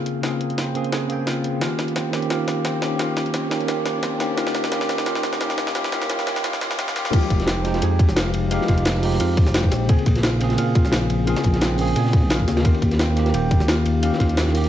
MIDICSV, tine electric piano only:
0, 0, Header, 1, 2, 480
1, 0, Start_track
1, 0, Key_signature, -4, "minor"
1, 0, Tempo, 344828
1, 327, Time_signature, 4, 2, 24, 8
1, 20446, End_track
2, 0, Start_track
2, 0, Title_t, "Tine electric piano"
2, 0, Program_c, 0, 4
2, 0, Control_c, 0, 64, 127
2, 0, Note_on_c, 0, 49, 80
2, 0, Note_on_c, 0, 58, 69
2, 0, Note_on_c, 0, 60, 71
2, 0, Note_on_c, 0, 68, 86
2, 276, Note_off_c, 0, 49, 0
2, 293, Note_on_c, 0, 49, 74
2, 295, Note_off_c, 0, 58, 0
2, 306, Note_off_c, 0, 60, 0
2, 316, Note_on_c, 0, 58, 64
2, 318, Note_off_c, 0, 68, 0
2, 340, Note_on_c, 0, 60, 66
2, 364, Note_on_c, 0, 68, 77
2, 1004, Note_off_c, 0, 49, 0
2, 1015, Note_off_c, 0, 58, 0
2, 1027, Note_off_c, 0, 60, 0
2, 1029, Note_on_c, 0, 49, 82
2, 1039, Note_off_c, 0, 68, 0
2, 1042, Note_on_c, 0, 58, 70
2, 1053, Note_on_c, 0, 60, 72
2, 1065, Note_on_c, 0, 68, 86
2, 1476, Note_off_c, 0, 49, 0
2, 1493, Note_on_c, 0, 49, 78
2, 1500, Note_off_c, 0, 58, 0
2, 1508, Note_off_c, 0, 60, 0
2, 1514, Note_off_c, 0, 68, 0
2, 1516, Note_on_c, 0, 58, 69
2, 1539, Note_on_c, 0, 60, 70
2, 1563, Note_on_c, 0, 79, 87
2, 2204, Note_off_c, 0, 49, 0
2, 2213, Note_on_c, 0, 51, 64
2, 2215, Note_off_c, 0, 58, 0
2, 2227, Note_off_c, 0, 60, 0
2, 2237, Note_on_c, 0, 58, 57
2, 2239, Note_off_c, 0, 79, 0
2, 2260, Note_on_c, 0, 61, 59
2, 2263, Control_c, 0, 64, 0
2, 2285, Note_on_c, 0, 67, 74
2, 2491, Control_c, 0, 64, 127
2, 2914, Note_off_c, 0, 51, 0
2, 2930, Note_on_c, 0, 51, 73
2, 2936, Note_off_c, 0, 58, 0
2, 2947, Note_off_c, 0, 61, 0
2, 2954, Note_on_c, 0, 58, 65
2, 2960, Note_off_c, 0, 67, 0
2, 2978, Note_on_c, 0, 61, 67
2, 3001, Note_on_c, 0, 67, 86
2, 3156, Note_off_c, 0, 51, 0
2, 3173, Note_on_c, 0, 51, 66
2, 3180, Note_off_c, 0, 58, 0
2, 3195, Note_off_c, 0, 61, 0
2, 3197, Note_on_c, 0, 58, 59
2, 3206, Note_off_c, 0, 67, 0
2, 3243, Note_on_c, 0, 67, 71
2, 3878, Note_off_c, 0, 51, 0
2, 3895, Note_on_c, 0, 51, 71
2, 3896, Note_off_c, 0, 58, 0
2, 3917, Note_on_c, 0, 58, 69
2, 3919, Note_off_c, 0, 67, 0
2, 3940, Note_on_c, 0, 61, 67
2, 3963, Note_on_c, 0, 67, 82
2, 4117, Note_off_c, 0, 51, 0
2, 4134, Note_on_c, 0, 51, 65
2, 4141, Note_off_c, 0, 58, 0
2, 4156, Note_off_c, 0, 61, 0
2, 4158, Note_on_c, 0, 58, 60
2, 4168, Note_off_c, 0, 67, 0
2, 4204, Note_on_c, 0, 67, 76
2, 4834, Note_off_c, 0, 51, 0
2, 4851, Note_on_c, 0, 51, 77
2, 4856, Note_off_c, 0, 58, 0
2, 4876, Note_on_c, 0, 58, 67
2, 4879, Note_off_c, 0, 67, 0
2, 4898, Note_on_c, 0, 61, 70
2, 4922, Note_on_c, 0, 67, 89
2, 5075, Note_off_c, 0, 51, 0
2, 5091, Note_on_c, 0, 51, 65
2, 5099, Note_off_c, 0, 58, 0
2, 5115, Note_off_c, 0, 61, 0
2, 5115, Note_on_c, 0, 58, 64
2, 5127, Note_off_c, 0, 67, 0
2, 5161, Note_on_c, 0, 67, 74
2, 5794, Note_off_c, 0, 51, 0
2, 5810, Note_on_c, 0, 51, 75
2, 5815, Note_off_c, 0, 58, 0
2, 5834, Note_on_c, 0, 58, 70
2, 5838, Note_off_c, 0, 67, 0
2, 5857, Note_on_c, 0, 61, 73
2, 5881, Note_on_c, 0, 67, 85
2, 6035, Note_off_c, 0, 51, 0
2, 6051, Note_on_c, 0, 51, 73
2, 6058, Note_off_c, 0, 58, 0
2, 6075, Note_off_c, 0, 61, 0
2, 6075, Note_on_c, 0, 58, 64
2, 6087, Note_off_c, 0, 67, 0
2, 6098, Note_on_c, 0, 61, 66
2, 6102, Control_c, 0, 64, 0
2, 6122, Note_on_c, 0, 67, 80
2, 6382, Control_c, 0, 64, 127
2, 6514, Note_off_c, 0, 51, 0
2, 6531, Note_on_c, 0, 51, 77
2, 6538, Note_off_c, 0, 58, 0
2, 6555, Note_off_c, 0, 61, 0
2, 6555, Note_on_c, 0, 58, 71
2, 6567, Note_off_c, 0, 67, 0
2, 6578, Note_on_c, 0, 61, 68
2, 6602, Note_on_c, 0, 67, 83
2, 6993, Note_off_c, 0, 51, 0
2, 7010, Note_on_c, 0, 51, 71
2, 7016, Note_off_c, 0, 58, 0
2, 7033, Note_on_c, 0, 58, 64
2, 7035, Note_off_c, 0, 61, 0
2, 7047, Note_off_c, 0, 67, 0
2, 7057, Note_on_c, 0, 61, 64
2, 7079, Note_on_c, 0, 67, 79
2, 7474, Note_off_c, 0, 51, 0
2, 7491, Note_on_c, 0, 51, 76
2, 7498, Note_off_c, 0, 58, 0
2, 7514, Note_off_c, 0, 61, 0
2, 7515, Note_on_c, 0, 58, 67
2, 7526, Note_off_c, 0, 67, 0
2, 7537, Note_on_c, 0, 61, 67
2, 7561, Note_on_c, 0, 67, 82
2, 7955, Note_off_c, 0, 51, 0
2, 7972, Note_on_c, 0, 51, 71
2, 7979, Note_off_c, 0, 58, 0
2, 7994, Note_off_c, 0, 61, 0
2, 7996, Note_on_c, 0, 58, 66
2, 8006, Note_off_c, 0, 67, 0
2, 8020, Note_on_c, 0, 61, 68
2, 8044, Note_on_c, 0, 67, 85
2, 8194, Note_off_c, 0, 51, 0
2, 8210, Note_on_c, 0, 51, 77
2, 8218, Note_off_c, 0, 58, 0
2, 8235, Note_on_c, 0, 58, 70
2, 8236, Note_off_c, 0, 61, 0
2, 8248, Note_off_c, 0, 67, 0
2, 8257, Note_on_c, 0, 61, 70
2, 8282, Note_on_c, 0, 67, 86
2, 8434, Note_off_c, 0, 51, 0
2, 8451, Note_on_c, 0, 51, 80
2, 8458, Note_off_c, 0, 58, 0
2, 8474, Note_off_c, 0, 61, 0
2, 8475, Note_on_c, 0, 58, 69
2, 8487, Note_off_c, 0, 67, 0
2, 8498, Note_on_c, 0, 61, 73
2, 8522, Note_on_c, 0, 67, 82
2, 8674, Note_off_c, 0, 51, 0
2, 8690, Note_on_c, 0, 51, 78
2, 8697, Note_off_c, 0, 58, 0
2, 8713, Note_on_c, 0, 58, 68
2, 8715, Note_off_c, 0, 61, 0
2, 8727, Note_off_c, 0, 67, 0
2, 8738, Note_on_c, 0, 61, 68
2, 8761, Note_on_c, 0, 67, 85
2, 8914, Note_off_c, 0, 51, 0
2, 8931, Note_on_c, 0, 51, 75
2, 8937, Note_off_c, 0, 58, 0
2, 8954, Note_on_c, 0, 58, 68
2, 8955, Note_off_c, 0, 61, 0
2, 8966, Note_off_c, 0, 67, 0
2, 8977, Note_on_c, 0, 61, 64
2, 9001, Note_on_c, 0, 67, 78
2, 9151, Note_off_c, 0, 51, 0
2, 9168, Note_on_c, 0, 51, 77
2, 9176, Note_off_c, 0, 58, 0
2, 9192, Note_on_c, 0, 58, 70
2, 9195, Note_off_c, 0, 61, 0
2, 9207, Note_off_c, 0, 67, 0
2, 9215, Note_on_c, 0, 61, 70
2, 9239, Note_on_c, 0, 67, 86
2, 9394, Note_off_c, 0, 51, 0
2, 9411, Note_on_c, 0, 51, 75
2, 9418, Note_off_c, 0, 58, 0
2, 9434, Note_off_c, 0, 61, 0
2, 9434, Note_on_c, 0, 58, 70
2, 9445, Note_off_c, 0, 67, 0
2, 9458, Note_on_c, 0, 61, 66
2, 9480, Note_on_c, 0, 67, 84
2, 9636, Note_off_c, 0, 51, 0
2, 9653, Note_on_c, 0, 51, 77
2, 9659, Note_off_c, 0, 58, 0
2, 9675, Note_off_c, 0, 61, 0
2, 9675, Note_on_c, 0, 58, 71
2, 9686, Note_off_c, 0, 67, 0
2, 9700, Note_on_c, 0, 61, 73
2, 9722, Note_on_c, 0, 67, 86
2, 9892, Note_off_c, 0, 51, 0
2, 9895, Note_on_c, 0, 53, 76
2, 9904, Note_off_c, 0, 58, 0
2, 9916, Note_off_c, 0, 61, 0
2, 9917, Note_on_c, 0, 56, 67
2, 9927, Note_off_c, 0, 67, 0
2, 9941, Note_on_c, 0, 63, 65
2, 9949, Control_c, 0, 64, 0
2, 9965, Note_on_c, 0, 67, 83
2, 10229, Control_c, 0, 64, 127
2, 10597, Note_off_c, 0, 53, 0
2, 10614, Note_on_c, 0, 53, 86
2, 10616, Note_off_c, 0, 56, 0
2, 10628, Note_off_c, 0, 63, 0
2, 10638, Note_on_c, 0, 56, 75
2, 10640, Note_off_c, 0, 67, 0
2, 10662, Note_on_c, 0, 63, 74
2, 10686, Note_on_c, 0, 79, 84
2, 11796, Note_off_c, 0, 53, 0
2, 11812, Note_on_c, 0, 53, 71
2, 11816, Note_off_c, 0, 56, 0
2, 11828, Note_off_c, 0, 63, 0
2, 11835, Note_on_c, 0, 56, 70
2, 11840, Note_off_c, 0, 79, 0
2, 11859, Note_on_c, 0, 63, 67
2, 11883, Note_on_c, 0, 67, 80
2, 12516, Note_off_c, 0, 53, 0
2, 12533, Note_on_c, 0, 53, 84
2, 12535, Note_off_c, 0, 56, 0
2, 12547, Note_off_c, 0, 63, 0
2, 12555, Note_on_c, 0, 56, 74
2, 12558, Note_off_c, 0, 67, 0
2, 12579, Note_on_c, 0, 63, 75
2, 12602, Note_on_c, 0, 67, 90
2, 13723, Note_off_c, 0, 53, 0
2, 13732, Note_on_c, 0, 49, 75
2, 13734, Note_off_c, 0, 56, 0
2, 13746, Note_off_c, 0, 63, 0
2, 13756, Note_on_c, 0, 58, 66
2, 13758, Note_off_c, 0, 67, 0
2, 13779, Note_on_c, 0, 60, 68
2, 13785, Control_c, 0, 64, 0
2, 13802, Note_on_c, 0, 68, 84
2, 14034, Control_c, 0, 64, 127
2, 14436, Note_off_c, 0, 49, 0
2, 14453, Note_on_c, 0, 49, 84
2, 14455, Note_off_c, 0, 58, 0
2, 14466, Note_off_c, 0, 60, 0
2, 14476, Note_on_c, 0, 58, 71
2, 14478, Note_off_c, 0, 68, 0
2, 14499, Note_on_c, 0, 60, 74
2, 14522, Note_on_c, 0, 68, 91
2, 15635, Note_off_c, 0, 49, 0
2, 15652, Note_on_c, 0, 49, 75
2, 15655, Note_off_c, 0, 58, 0
2, 15667, Note_off_c, 0, 60, 0
2, 15677, Note_on_c, 0, 58, 65
2, 15678, Note_off_c, 0, 68, 0
2, 15699, Note_on_c, 0, 60, 63
2, 15723, Note_on_c, 0, 68, 82
2, 16356, Note_off_c, 0, 49, 0
2, 16372, Note_on_c, 0, 49, 82
2, 16375, Note_off_c, 0, 58, 0
2, 16387, Note_off_c, 0, 60, 0
2, 16396, Note_on_c, 0, 58, 75
2, 16398, Note_off_c, 0, 68, 0
2, 16420, Note_on_c, 0, 60, 78
2, 16444, Note_on_c, 0, 68, 94
2, 17563, Note_off_c, 0, 49, 0
2, 17571, Note_on_c, 0, 51, 76
2, 17575, Note_off_c, 0, 58, 0
2, 17587, Note_off_c, 0, 60, 0
2, 17594, Note_on_c, 0, 58, 66
2, 17599, Note_off_c, 0, 68, 0
2, 17618, Note_on_c, 0, 61, 65
2, 17623, Control_c, 0, 64, 0
2, 17642, Note_on_c, 0, 67, 82
2, 17844, Control_c, 0, 64, 127
2, 18275, Note_off_c, 0, 51, 0
2, 18292, Note_on_c, 0, 51, 81
2, 18294, Note_off_c, 0, 58, 0
2, 18306, Note_off_c, 0, 61, 0
2, 18316, Note_on_c, 0, 58, 79
2, 18318, Note_off_c, 0, 67, 0
2, 18363, Note_on_c, 0, 67, 88
2, 19474, Note_off_c, 0, 51, 0
2, 19491, Note_on_c, 0, 51, 73
2, 19495, Note_off_c, 0, 58, 0
2, 19514, Note_on_c, 0, 58, 65
2, 19518, Note_off_c, 0, 67, 0
2, 19538, Note_on_c, 0, 61, 67
2, 19562, Note_on_c, 0, 67, 78
2, 20196, Note_off_c, 0, 51, 0
2, 20213, Note_on_c, 0, 51, 81
2, 20214, Note_off_c, 0, 58, 0
2, 20226, Note_off_c, 0, 61, 0
2, 20237, Note_on_c, 0, 58, 71
2, 20238, Note_off_c, 0, 67, 0
2, 20283, Note_on_c, 0, 67, 94
2, 20446, Note_off_c, 0, 51, 0
2, 20446, Note_off_c, 0, 58, 0
2, 20446, Note_off_c, 0, 67, 0
2, 20446, End_track
0, 0, End_of_file